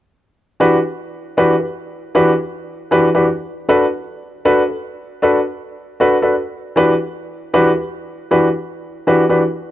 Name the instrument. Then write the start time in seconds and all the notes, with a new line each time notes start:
grand piano
0.60 E3 D4 F#4 G4 B4
1.37 E3 D4 F#4 G4 B4
1.60 G4 B4
2.15 E3 D4 F#4 G4 B4
2.91 E3 D4 F#4 G4 B4
3.15 E3 D4 F#4 G4 B4
3.69 D4 F#4 A4 B4
4.45 D4 F#4 A4 B4
4.68 A4 B4
5.22 D4 F#4 A4 B4
6.00 D4 F#4 A4 B4
6.22 D4 F#4 A4 B4
6.76 E3 D4 F#4 G4 B4
7.54 E3 D4 F#4 G4 B4
7.76 G4 B4
8.31 E3 D4 F#4 G4 B4
9.07 E3 D4 F#4 G4 B4
9.29 E3 D4 F#4 G4 B4